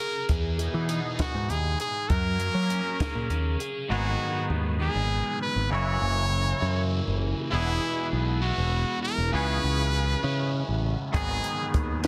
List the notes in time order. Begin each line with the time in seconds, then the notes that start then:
Already playing: F#3 A#3 C#4 G#4 A#4
0.00 G#4
0.29 E2 B2 E3 B3 D#4 G#4, kick, closed hi-hat
0.59 E3, closed hi-hat
0.74 E3
0.89 D#4, closed hi-hat
1.19 F#4 G#4, kick, snare, closed hi-hat
1.34 G#2
1.48 D#2 D#4 G#4, closed hi-hat
1.79 G#4, closed hi-hat
2.08 F#2 F#3 A#3 C#4 G#4 A#4, kick, closed hi-hat
2.39 F#3, closed hi-hat
2.54 F#3
2.69 C#4, closed hi-hat
3.00 G#4, kick, snare, closed hi-hat
3.15 A#2
3.30 D#2 C#4, closed hi-hat
3.59 G#4, closed hi-hat
3.88 G#1 G#2 D#3 F#3 G#3 B3 D#4 F#4 G#4
4.50 D#2
4.79 G#2 D#3 G#3 B3 D#4 G#4
4.95 G#1
5.42 B4
5.56 G#1
5.70 F#1 F#2 C#3 E3 A#3 E4 F#4 C#5
6.01 F#1
6.60 F#2 C#3 E3 A#3 E4
7.07 F#1
7.51 E1 E2 B2 E3 G#3 B3 E4
7.55 G#4
8.13 B1
8.42 E3 G#3 B3 E4 F#4
8.58 E1
9.03 A#4
9.18 E1
9.32 C#2 C#3 E3 G#3 B3 C#4 E4 G#4 B4
9.64 C#2
10.22 C#3 G#3 C#4 E4
10.69 A1
11.12 G#1 G#2 D#3 F#3 G#3 B3 D#4 G#4 F#5 B5 D#6, kick, closed hi-hat
11.44 closed hi-hat
11.74 D#2, kick, closed hi-hat
12.03 G#3 B3 D#4, closed hi-hat